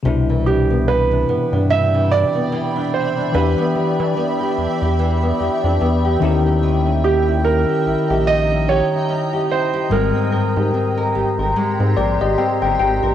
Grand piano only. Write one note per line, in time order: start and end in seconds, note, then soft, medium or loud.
0.46 0.89 G4 medium
0.88 1.73 B4 medium
1.70 2.12 E5 loud
2.11 2.96 D5 loud
2.94 3.36 C5 medium
3.34 4.95 B4 medium
7.04 7.46 G4 medium
7.45 8.30 A#4 medium
8.27 8.70 D#5 loud
8.69 9.53 C#5 loud
9.52 9.93 C5 medium
9.92 11.52 A#4 medium